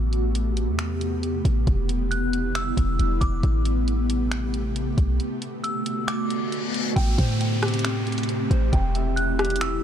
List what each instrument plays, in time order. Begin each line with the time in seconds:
Already playing: 808-style bass A1, ambient pad C3 A3 B3 G4
0.13 closed hi-hat
0.35 closed hi-hat
0.57 closed hi-hat
0.68 808-style bass E2
0.79 finger snap, closed hi-hat
1.01 closed hi-hat
1.23 closed hi-hat
1.45 808-style bass A1, kick, closed hi-hat
1.67 808-style bass E1, ambient pad D3 G3 E4, kick, closed hi-hat
1.89 closed hi-hat
2.11 synth bell F#6, closed hi-hat
2.33 closed hi-hat
2.55 synth bell E6, finger snap, closed hi-hat
2.77 808-style bass E1, kick, closed hi-hat
2.99 808-style bass E1, closed hi-hat
3.21 808-style bass E1, synth bell D6, kick, closed hi-hat
3.43 808-style bass A1, ambient pad C3 A3 G4, kick, closed hi-hat
3.65 closed hi-hat
3.88 closed hi-hat
4.10 closed hi-hat
4.31 finger snap, closed hi-hat
4.54 closed hi-hat
4.76 closed hi-hat
4.98 808-style bass B1, kick, closed hi-hat
5.20 ambient pad D3 A3 F#4, closed hi-hat
5.42 closed hi-hat
5.64 synth bell E6, closed hi-hat
5.86 closed hi-hat
6.08 synth bell D6, finger snap, closed hi-hat, reverse cymbal
6.30 closed hi-hat
6.52 closed hi-hat
6.74 closed hi-hat
6.96 808-style bass A1, ambient pad C3 A3 C4 G4, clean electric guitar G5, kick, closed hi-hat, downlifter
7.18 808-style bass A2, clean electric guitar C5, kick, closed hi-hat
7.41 closed hi-hat
7.62 clean electric guitar G4, cross-stick, closed hi-hat
7.68 closed hi-hat
7.74 closed hi-hat
7.79 closed hi-hat
7.85 clean electric guitar C4, finger snap, closed hi-hat
8.07 closed hi-hat
8.12 closed hi-hat
8.18 closed hi-hat
8.23 closed hi-hat
8.29 closed hi-hat
8.51 808-style bass A1, clean electric guitar C5, kick, closed hi-hat
8.73 808-style bass E1, ambient pad D3 G3 E4, clean electric guitar G5, kick, closed hi-hat
8.95 clean electric guitar E5, closed hi-hat
9.16 synth bell F#6, closed hi-hat
9.39 clean electric guitar G4, cross-stick, closed hi-hat
9.45 closed hi-hat
9.50 closed hi-hat
9.56 closed hi-hat
9.61 clean electric guitar E4, synth bell E6, finger snap, closed hi-hat